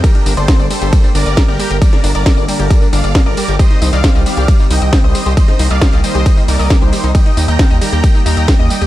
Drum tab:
RD |x---x---x---x---|x---x---x---x---|x---x---x---x---|x---x---x---x---|
HH |xxoxx-oxx-oxx-ox|xxoxx-oxx-oxx-ox|xxoxx-oxx-oxx-ox|xxoxxxoxx-oox-ox|
TB |x-xxxxxxxxxxx-xx|x-xxxxxxxxxxx-xx|x-xxxxxxxxxxx-xx|x-xxxxxxxxxxx-xx|
SD |----o-------o---|-o--o-------o---|----o-------o---|-o--o-------o---|
BD |o---o---o---o---|o---o---o---o---|o---o---o---o---|o---o---o---o---|

RD |x---x---x---x---|
HH |xxoxx-oxx-oxx-ox|
TB |x-xxxxxxxxxxx-xx|
SD |----o-------o---|
BD |o---o---o---o---|